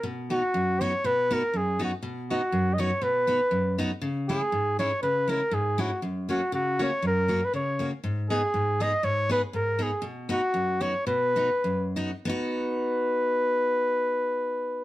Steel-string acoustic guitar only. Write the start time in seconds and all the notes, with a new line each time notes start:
0.03 B2
0.30 B3 D#4 F#4
0.54 F#2
0.81 B3 D#4 F#4
1.04 B2
1.31 B3 D#4 F#4
1.54 F#2
1.79 B3 D#4 F#4
2.03 B2
2.30 B3 D#4 F#4
2.52 F#2
2.78 B3 D#4 F#4
3.02 B2
3.27 B3 D#4 F#4
3.51 F#2
3.78 B3 D#4 F#4
4.02 C#3
4.29 G#3 C#4 E4
4.52 G#2
4.79 G#3 C#4 E4
5.03 C#3
5.28 G#3 C#4 E4
5.51 G#2
5.78 G#3 C#4 E4
6.02 F#2
6.29 A#3 C#4 F#4
6.52 C#3
6.79 A#3 C#4 F#4
7.02 F#2
7.28 A#3 C#4 F#4
7.54 C#3
7.79 A#3 C#4 F#4
8.04 G#2
8.30 B3 D#4 G#4
8.54 G#2
8.80 B3 D#4 G#4
9.03 G#2
9.29 B3 D#4 G#4
9.53 G#2
9.79 B3 D#4 G#4
10.02 B2
10.29 B3 D#4 F#4
10.54 F#2
10.81 B3 D#4 F#4
11.07 B2
11.36 B3 D#4 F#4
11.64 F#2
11.96 B3 D#4 F#4
12.25 B3 D#4
12.29 F#4